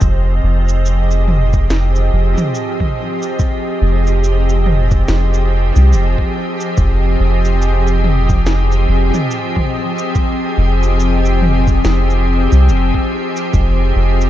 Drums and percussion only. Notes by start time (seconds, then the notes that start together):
0.01 kick, cabasa
0.69 cabasa
0.86 cabasa
1.11 cabasa
1.28 mid tom
1.53 kick, cabasa
1.70 snare, cabasa
1.96 cabasa
2.38 mid tom, cabasa
2.55 cabasa
2.80 kick, mid tom
3.23 cabasa
3.39 kick, cabasa
4.07 cabasa
4.24 cabasa
4.49 cabasa
4.66 mid tom
4.91 kick, cabasa
5.08 snare, cabasa
5.34 cabasa
5.76 cabasa
5.93 cabasa
6.18 kick
6.60 cabasa
6.77 kick, cabasa
7.45 cabasa
7.62 cabasa
7.87 cabasa
8.04 mid tom
8.30 kick, cabasa
8.47 snare, cabasa
8.72 cabasa
9.14 mid tom, cabasa
9.31 cabasa
9.56 kick, mid tom
9.99 cabasa
10.15 kick, cabasa
10.83 cabasa
11.00 cabasa
11.25 cabasa
11.42 mid tom
11.68 kick, cabasa
11.85 snare, cabasa
12.10 cabasa
12.52 cabasa
12.69 cabasa
12.94 kick
13.37 cabasa
13.54 kick, cabasa
14.21 cabasa